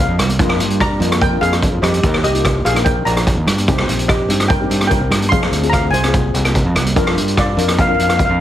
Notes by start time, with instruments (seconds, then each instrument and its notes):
0.02 steel pan F5
0.08 fingered electric bass F2
0.18 fingered electric bass C2, cross-stick, closed hi-hat, low conga
0.29 closed hi-hat, high conga
0.39 fingered electric bass F2, steel pan A#3 D4 F4, kick, closed hi-hat
0.49 cross-stick, high conga
0.59 fingered electric bass G2, closed hi-hat, low conga
0.70 closed hi-hat
0.80 steel pan D5 A#5, kick, cross-stick, closed hi-hat
1.00 fingered electric bass F2, steel pan A#3 D4 F4, closed hi-hat, low conga
1.11 cross-stick, closed hi-hat, high conga
1.21 steel pan A#4 G5, kick, closed hi-hat, high conga
1.31 steel pan A#3 D4 F4
1.41 fingered electric bass F2, steel pan G#4 F5, closed hi-hat
1.53 cross-stick, closed hi-hat, high conga
1.62 kick, closed hi-hat
1.72 fingered electric bass F2
1.82 fingered electric bass F2, steel pan G4 D#5, cross-stick, closed hi-hat, low conga
1.94 closed hi-hat, high conga
2.02 fingered electric bass D#2, steel pan A#3 D#4 G4, kick, closed hi-hat
2.14 cross-stick, high conga
2.24 fingered electric bass C2, steel pan G4 D#5, closed hi-hat, low conga
2.34 steel pan A#3 D#4 F4, closed hi-hat
2.45 kick, cross-stick, closed hi-hat
2.65 fingered electric bass A#1, steel pan G#4 F5, closed hi-hat
2.74 steel pan A#3 D#4 G4, cross-stick, closed hi-hat, high conga
2.85 steel pan A#4 G5, kick, closed hi-hat, high conga
3.05 fingered electric bass A#1, steel pan D5 A#5, closed hi-hat
3.16 cross-stick, closed hi-hat, high conga
3.27 kick, closed hi-hat
3.37 fingered electric bass D#2
3.46 fingered electric bass G2, cross-stick, closed hi-hat, low conga
3.58 closed hi-hat, high conga
3.68 fingered electric bass C2, steel pan C4 D#4 G4, kick, closed hi-hat, low conga
3.78 cross-stick, high conga
3.88 fingered electric bass A#1, closed hi-hat, low conga
3.99 closed hi-hat
4.08 steel pan G4 D#5, kick, cross-stick, closed hi-hat
4.28 fingered electric bass G2, steel pan C4 D#4 G4, closed hi-hat, low conga
4.40 cross-stick, closed hi-hat, high conga
4.48 steel pan A#4 G5, kick, closed hi-hat, high conga
4.60 steel pan C4 D#4 G4
4.70 fingered electric bass G2, closed hi-hat
4.81 cross-stick, closed hi-hat, high conga
4.87 steel pan A#4 G5, kick, closed hi-hat
5.00 fingered electric bass C2
5.10 fingered electric bass G2, cross-stick, closed hi-hat, low conga
5.21 closed hi-hat, high conga
5.29 fingered electric bass F2, steel pan C4 F4 G#4 F5 C6, kick, closed hi-hat, low conga
5.42 cross-stick, high conga
5.51 fingered electric bass D2, closed hi-hat, low conga
5.63 steel pan C4 F4 G#4, closed hi-hat
5.70 steel pan F5 A#5, kick, cross-stick, closed hi-hat
5.91 fingered electric bass C2, steel pan C5 G#5, closed hi-hat, low conga
6.04 steel pan C4 F4 G#4, cross-stick, closed hi-hat, high conga
6.14 kick, closed hi-hat, high conga
6.34 fingered electric bass C2, closed hi-hat
6.45 cross-stick, closed hi-hat, high conga
6.55 kick, closed hi-hat
6.65 fingered electric bass F2
6.75 fingered electric bass C2, cross-stick, closed hi-hat, low conga
6.86 closed hi-hat, high conga
6.96 fingered electric bass F2, steel pan D4 F4 A#4, kick, closed hi-hat
7.06 cross-stick, high conga
7.16 fingered electric bass G2, closed hi-hat, low conga
7.28 closed hi-hat
7.37 steel pan F4 D5, kick, cross-stick, closed hi-hat
7.57 fingered electric bass F2, steel pan D4 F4 A#4, closed hi-hat
7.68 cross-stick, closed hi-hat, high conga
7.77 steel pan A#4 F5, kick, closed hi-hat, high conga
7.87 steel pan D4 F4 A#4 F5
7.95 steel pan F5
7.99 fingered electric bass F2, closed hi-hat
8.03 steel pan F5
8.09 steel pan F5, cross-stick, closed hi-hat, high conga
8.17 steel pan F5, kick, closed hi-hat
8.25 steel pan F5
8.29 fingered electric bass F2